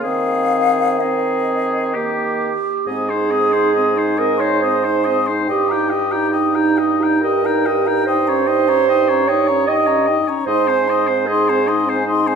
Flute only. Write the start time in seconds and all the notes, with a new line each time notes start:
0.02 F5
1.00 D#5
2.87 D#6
3.09 C6
3.32 D#6
3.54 C6
3.74 D#6
3.96 C6
4.17 D#6
4.38 C6
4.62 D#6
4.83 C6
5.04 D#6
5.26 C6
5.46 G5
5.69 A#5
5.88 G5
6.11 A#5
6.31 G5
6.54 A#5
6.77 G5
7.01 A#5
7.23 G5
7.45 A#5
7.66 G5
7.86 A#5
8.07 G5
8.27 A#5
8.47 G5
8.68 A#5
8.89 G5
9.10 A#5
9.29 G5
9.49 A#5
9.68 G5
9.87 A#5
10.08 G5
10.29 A#5
10.49 C6
10.70 G#5
10.88 C6
11.09 G#5
11.30 C6
11.50 G#5
11.68 C6
11.89 G#5
12.08 C6
12.28 G#5